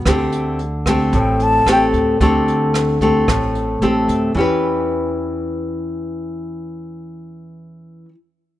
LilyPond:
<<
  \new Staff \with { instrumentName = "Flute" } { \time 4/4 \key d \dorian \tempo 4 = 112 r2 g''8 a''8 g''8 r8 | r1 | r1 | r1 | }
  \new Staff \with { instrumentName = "Nylon-string guitar" } { \time 4/4 \key d \dorian << { <a c' g'>4 r8 <a c' g'>4. <a c' g'>4 | <a c' g'>4. <a c' g'>4. <a c' g'>4 | <e cis' g' b'>1~ | <e cis' g' b'>1 | } \\ { d2 a,2 | d2 a,2 | r1 | r1 | } >> }
  \new Staff \with { instrumentName = "Upright bass" } { \clef bass \time 4/4 \key d \dorian d,2 a,,4 a,,8 d,8 | d,2 a,,4 a,,8 d,8 | e,1~ | e,1 | }
  \new DrumStaff \with { instrumentName = "Drums" } \drummode { \time 4/4 <hh bd ss>8 hh8 hh8 <hh bd ss>8 <hh bd>8 hh8 <hh ss>8 hh8 | <hh bd>8 hh8 <hh ss>8 <hh bd>8 <hh bd ss>8 hh8 hh8 hh8 | r4 r4 r4 r4 | r4 r4 r4 r4 | }
>>